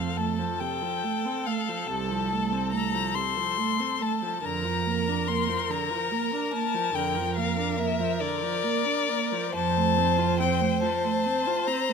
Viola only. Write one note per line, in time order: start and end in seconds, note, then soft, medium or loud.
0.00 0.19 C4 soft
0.18 0.40 A3 soft
0.39 0.62 F3 soft
0.61 0.84 C3 soft
0.82 1.05 F3 soft
1.04 1.26 A3 soft
1.25 1.48 C4 soft
1.47 1.70 A3 soft
1.68 1.89 F3 soft
1.89 2.12 C3 soft
2.10 2.33 F3 soft
2.31 2.54 A3 soft
2.52 2.74 C4 soft
2.73 2.95 A3 soft
2.94 3.16 F3 soft
3.15 3.38 C3 soft
3.36 3.59 F3 soft
3.58 3.81 A3 soft
3.79 4.02 C4 soft
4.01 4.23 A3 soft
4.22 4.42 F3 soft
4.43 4.66 D3 soft
4.64 4.88 F3 soft
4.86 5.09 A#3 soft
5.08 5.29 D4 soft
5.28 5.50 A#3 soft
5.49 5.71 F3 soft
5.70 5.92 D3 soft
5.90 6.12 F3 soft
6.11 6.34 A#3 soft
6.33 6.55 D4 soft
6.53 6.76 A#3 soft
6.74 6.93 F3 soft
6.94 7.18 D3 soft
7.16 7.39 F3 soft
7.37 7.59 A#3 soft
7.58 7.80 D4 soft
7.78 8.01 A#3 soft
8.00 8.22 F3 soft
8.21 8.44 D3 soft
8.42 8.65 F3 soft
8.64 8.87 A#3 soft
8.86 9.11 D4 soft
9.10 9.33 A#3 soft
9.32 9.54 F3 soft
9.55 9.78 F3 medium
9.76 9.99 A3 medium
9.97 10.20 C4 soft
10.18 10.41 F4 soft
10.40 10.62 C4 soft
10.61 10.83 A3 soft
10.82 11.05 F3 soft
11.04 11.27 A3 soft
11.26 11.48 C4 soft
11.46 11.69 F4 soft
11.67 11.90 C4 soft
11.89 11.93 A3 soft